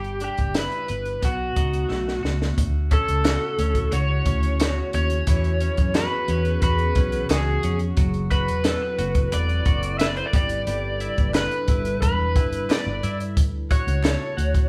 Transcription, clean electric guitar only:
Already playing: G3 B4
0.21 D4
0.55 E4
0.89 B4
1.22 B2
1.56 D#4
1.89 A3
2.23 F#4
2.91 C#4
3.25 F#4
3.59 C#4
3.92 F#4
4.27 C#4
4.60 F#4
4.94 C#4
5.28 E3
5.61 C#4
5.96 F#4
6.30 C#4
6.63 F#4
6.97 C#4
7.30 F#4
7.64 C#4
7.97 F#3
8.31 F#4
8.65 A4
8.82 B4
8.99 F#4
9.32 B4
9.66 F#4
10.01 B4
10.34 G3
10.67 G3
11.01 E4
11.35 B4
11.69 E4
12.02 B4
12.36 E4
12.70 B4
13.03 E4
13.71 F#4
14.04 A4
14.37 F#4

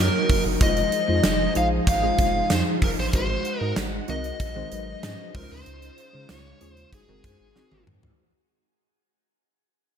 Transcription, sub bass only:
0.30 F#1
0.45 F#1
0.61 F1
1.09 F2
1.25 F1
1.56 A#1
1.87 G#1
2.19 F1
2.51 F2
2.82 F1
2.98 A1
3.14 G#1
3.61 G#2
3.77 G#1
4.09 C2
4.40 A#1
4.72 G#1
5.04 G#2
5.35 C#2
5.51 D2
5.67 C#2
6.14 C#3
6.30 C#2
6.62 D#2
6.92 G#1
7.09 F#1
7.24 F#2
7.40 G#1
7.56 G#1
7.72 G#1
7.87 G#2

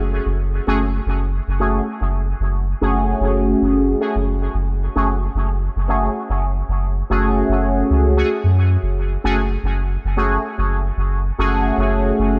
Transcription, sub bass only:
Already playing: F#1
0.26 F#1
0.67 F#1
1.06 F#1
1.48 F#1
2.01 F#1
2.40 F#1
2.81 F#1
3.20 F#1
3.62 F#1
4.15 F#1
4.54 F#1
4.96 F#1
5.35 F#1
5.76 F#1
6.30 F#1
6.68 F#1
7.10 F#1
7.49 F#1
7.90 C#2
8.44 F#2
8.83 F#1
9.24 F#1
9.63 F#1
10.05 F#1
10.58 F#1
10.97 F#1
11.38 F#1
11.77 F#1
12.19 F#1

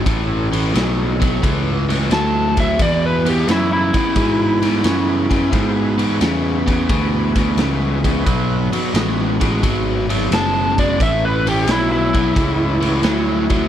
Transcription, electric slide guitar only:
2.13 A5
2.60 E5
2.82 D5
3.06 B4
3.29 G4
3.51 E4
3.73 E4
10.34 A5
10.79 D5
11.03 E5
11.25 B4
11.49 G4
11.71 E4
11.92 E4

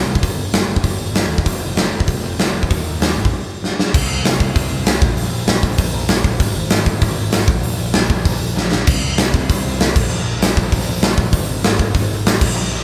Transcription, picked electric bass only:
0.06 C2
0.23 G1
0.36 G1
0.53 G1
0.66 G1
0.84 G1
1.12 G1
1.26 D#2
1.45 F1
1.59 F1
1.75 F1
1.90 F1
2.07 F1
2.20 F1
2.36 F1
2.52 F1
2.70 D#2
2.84 D#2
3.00 D#2
3.15 G#1
3.93 C2
4.09 C2
4.23 C2
4.55 C2
4.71 C2
4.85 C2
5.01 A#1
5.15 A#1
5.32 A#1
5.46 A#1
5.63 A#1
5.78 A#1
5.93 A#1
6.09 A#1
6.24 A#1
6.40 G#1
6.54 G#1
6.70 G#1
7.02 G#1
7.17 G#1
7.33 G#1
7.48 A#1
7.64 A#1
7.78 A#1
7.95 A#1
8.10 A#1
8.26 A#1
8.40 A#1
8.55 A#1
8.73 A#1
8.87 C2
9.04 C2
9.18 C2
9.49 C2
9.64 C2
9.78 C2
9.95 A#1
10.09 A#1
10.23 A#1
10.40 A#1
10.57 A#1
10.72 A#1
10.88 A#1
11.03 A#1
11.17 A#1
11.32 G#1
11.49 G#1
11.64 G#1
11.95 G#1
12.12 G#1
12.25 A1
12.42 A#1
12.55 A#1
12.71 A#1

